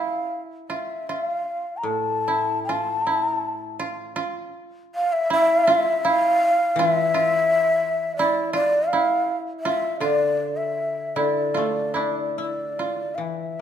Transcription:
Already playing: E4 F5
0.68 F4 E5
1.07 F4 E5
1.24 F5
1.77 A#5
1.83 A2 A5
2.28 E4
2.64 A5
2.69 F4
3.07 E4
3.79 F4
4.16 F4
4.95 F5
5.13 E5
5.30 E4 E5
5.67 F4
6.04 E4 F5
6.76 E3 F4 E5
7.14 F4
8.17 E4 D5
8.53 F4 D5
8.88 F5
8.93 E4
9.60 E5
9.65 F4
10.00 D3 F4 D5
10.57 E5
11.16 D3 E4 D5
11.54 A3 F4
11.94 D4 E4
12.38 E4 D5
12.79 F4
13.15 E3 F5
13.22 E5

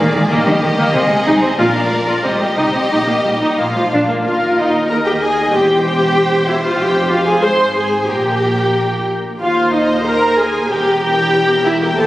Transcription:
Already playing: G#4 D5
0.00 A#3
0.15 D#3 G#3
0.30 D#2 D#3 A#3 G4 D#5
0.46 D#3 G3
0.62 D#2 D#3
0.78 D#3 A#3
0.94 C2 C3 C4 G#4
1.10 C3 G#3
1.26 C2 C3 D#4
1.42 C3 C4
1.58 A#1 A#2 F4 A#4 D5
1.74 A#2 D4
1.90 A#1 A#2 A#3
2.07 A#2 F4
2.23 C2 C3 C4 G4 D#5
2.39 C3 G3
2.56 C2 C3 D#4
2.74 C3 C4
2.91 A#1 A#2 D#4
3.07 A#2 A#3
3.25 A#1 A#2 G3
3.41 A#2 D#4
3.58 A#1 A#2 A#3 F4 F5
3.75 A#2 F3
3.93 A#1 A#2 D4
4.10 A#2 A#3
4.24 D#2 F4 A#4 F5
4.57 D#4 D#5
4.89 A#4 D#5 A#5
5.05 G4 G5
5.21 G#4 G#5
5.52 E1 E2 G4 C5 G5
5.85 G4 G5
6.48 E4 E5
6.64 F4 F5
6.79 F1 F2 G4 G5
7.11 F4 F5
7.27 G#4 G#5
7.42 G#1 G#2 C5 C6
7.75 G#4 G#5
8.08 A#1 A#2 G4 A#4 G5
9.40 D#2 F4 C5 F5
9.73 D#4 D#5
10.06 A#4 A#5
10.38 G#4 G#5
10.70 E1 E2 G4 A#4 G5
11.02 G4 G5
11.36 A#4
11.65 E4 E5
11.82 G4 G5
11.97 D#2 A4 C5 A5

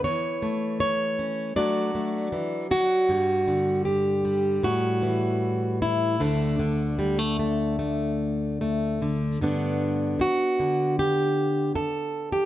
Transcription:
0.04 E3 C#5
0.42 A3
0.80 C#5
1.19 C#4
1.56 F#3 A3 D4 F#4 D5
1.95 A3
2.32 E3
2.71 F#3 F#4
3.09 G2 G3
3.48 D3
3.85 G4
4.25 G3
4.63 A2 F#4
5.02 E3
5.82 E4
6.20 D2 D3 A3 D4
6.59 D3
6.99 G3
7.19 A3
7.39 A3
7.79 A3
8.61 A3
9.02 D3
9.41 G2 D3 B3 D4
10.19 F#4, muted steel-string acoustic guitar stroke
10.60 D3
10.99 G4
11.76 A4, muted steel-string acoustic guitar stroke
12.32 G4

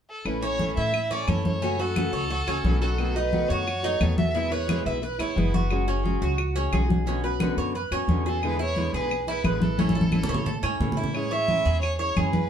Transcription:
0.10 A4
0.25 A1 E3 A3 C#4 E4 B4, high conga, claves
0.42 A3 C#4 E4 C#5, high conga
0.59 E3 A3 C#4 E4, high conga
0.77 A2 E4 E5, high conga
0.94 muted nylon-string guitar stroke, high conga, claves
1.11 A3 C#4 E4 D5, high conga
1.28 F#2 E3 A3 C#4 E4 A4 C#5, high conga, claves
1.45 A3 C#4 E4 C#5, high conga
1.62 C#3 E3 A3 C#4 F#4, high conga
1.79 A3 C#4 F#4 A4, high conga
1.96 C#3 E3 A3 C#4 F#4, high conga, claves
2.13 C#2 C#5, high conga
2.30 F#4, muted nylon-string guitar stroke, high conga
2.47 C#2 A3 C#4 F#4, high conga, claves
2.64 B1 C#3 E3 A3 C#4 F#4, high conga
2.81 A3 C#4 F#4 A4
2.98 B2 D#3 A3 B3 F#4, high conga, claves
3.15 A3 B3 D#4 F#4 B4, high conga
3.32 B2 D#3 A3 B3 F#4, high conga
3.49 F#2 F#4 C#5, high conga
3.66 muted nylon-string guitar stroke, high conga, claves
3.83 A3 B3 D#4 F#4, high conga
4.00 E2 B2 D#3 A3 B3 F#4 A4, high conga, claves
4.18 A3 B3 F#4 E5, high conga
4.34 B2 E3 G#3 B3 E4, high conga
4.51 G#3 B3 E4 B4 C#5, high conga
4.67 B2 E3 G#3 B3 E4, high conga, claves
4.86 B1 B4 E5, high conga
5.02 B4, muted nylon-string guitar stroke, high conga
5.18 G#1 G#3 B3 E4 C#5, high conga, claves
5.35 F#1 B2 E3 G#3 B3 E4 B4, high conga
5.54 G#3 B3 E4 F#4, high conga
5.70 F#3 G#3 C#4 F#4, high conga, claves
5.87 G#3 C#4 F#4, high conga
6.03 F#3 G#3 C#4 F#4, high conga
6.22 C#2 F#4, high conga
6.38 muted nylon-string guitar stroke, high conga, claves
6.55 G#3 C#4 F#4, high conga
6.71 B1 F#3 G#3 C#4 F#4 G#4, high conga, claves
6.88 G#3 C#4 F#4, high conga
7.06 B2 D3 B3 C#4 F#4, high conga
7.23 B3 C#4 F#4 B4, high conga
7.40 B2 D3 B3 C#4 F#4, high conga, claves
7.57 F#2 C#5, high conga
7.75 B4, muted nylon-string guitar stroke, high conga
7.91 F#2 B3 C#4 F#4, high conga, claves
8.08 E2 B2 D3 B3 C#4 F#4, high conga
8.26 B3 C#4 F#4 G#4 A4
8.42 B2 D3 G#3 B3 E4 B4, high conga, claves
8.59 G#3 B3 E4 C#5, high conga
8.76 B2 D3 G#3 B3 E4, high conga
8.93 B1 G#4 B4, high conga
9.11 muted nylon-string guitar stroke, high conga, claves
9.27 G#3 B3 E4 B4, high conga
9.43 A1 B2 D3 G#3 B3 E4 B4, high conga, claves
9.60 G#3 B3 E4 A4, high conga
9.78 E3 A3 C#4 E4, high conga
9.89 high conga
9.95 A3 C#4 E4 A4
10.01 high conga
10.12 E3 A3 C#4 E4, high conga, claves
10.23 low conga
10.29 A2 C#5
10.34 low conga
10.46 A4, muted nylon-string guitar stroke, low conga
10.63 G#2 A3 C#4 E4, claves
10.80 A2 E3 A3 C#4 E4, low conga
10.92 low conga
10.97 A3 C#4 E4
11.04 low conga
11.14 E3 G#3 C#4 E4 C#5, high conga, claves
11.31 G#3 C#4 E4 C#5 E5, high conga
11.48 E3 G#3 C#4 E4, high conga
11.65 E2 G#4, high conga
11.82 C#5, muted nylon-string guitar stroke, high conga, claves
11.98 G#3 C#4 E4 C#5, high conga
12.17 F#2 E3 G#3 C#4 E4 G#4, high conga, claves
12.32 G#3 C#4 E4 B4, high conga

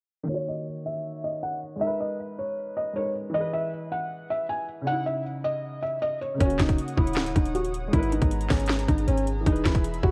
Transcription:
0.23 D#3 A#3
0.29 F#4 C#5
0.34 C#5
0.48 D#5
0.86 E5
1.24 D#5
1.43 F#5
1.76 G#3 D#4
1.81 A#4 E5
1.87 B4
2.00 D#5
2.39 C#5
2.77 D#5
2.93 G#3 D#4 A#4 C#5
2.99 B4
3.30 E3 E4
3.34 G#4 D#5
3.41 B4
3.53 E5
3.92 F#5
4.30 E5
4.49 G#5
4.81 C#3 C#4
4.87 D#4 F#5
4.92 E4
5.06 E5
5.44 D#5
5.82 E5
6.02 D#5
6.21 C#5
6.34 C#3 A#3
6.40 D#1 C#4 C#5 F#5 D#6, kick, closed hi-hat
6.45 F#4
6.50 closed hi-hat
6.58 D#1 D#4, kick, snare, clap, closed hi-hat
6.69 kick, closed hi-hat
6.78 closed hi-hat
6.88 closed hi-hat
6.97 D#1 E4, kick
7.07 closed hi-hat
7.13 C#1, snare, clap, closed hi-hat
7.20 closed hi-hat
7.26 D#1, closed hi-hat
7.36 D#1 D#4, kick, closed hi-hat
7.45 closed hi-hat
7.55 F#4, closed hi-hat
7.64 closed hi-hat
7.74 closed hi-hat
7.88 G#3 D#4
7.93 G#1 B3 E4 G#4 A#4 A#5, kick, closed hi-hat
7.99 B4
8.03 closed hi-hat
8.12 D#4, closed hi-hat
8.22 G#1, kick, closed hi-hat
8.31 closed hi-hat
8.41 closed hi-hat
8.49 G#1 C#4, kick, snare, clap, open hi-hat
8.60 closed hi-hat
8.66 snare, clap, closed hi-hat
8.73 closed hi-hat
8.79 closed hi-hat
8.88 G#1 D#4, kick, closed hi-hat
8.98 closed hi-hat
9.08 G#1 C#4, closed hi-hat
9.17 closed hi-hat
9.27 closed hi-hat
9.41 E3 E4
9.46 E1 D#4 G#4 E5 B5, kick, closed hi-hat
9.51 B4, closed hi-hat
9.64 E1 E4, kick, snare, clap, closed hi-hat
9.74 kick, closed hi-hat
9.84 closed hi-hat
9.94 closed hi-hat
10.03 E1 F#4, kick

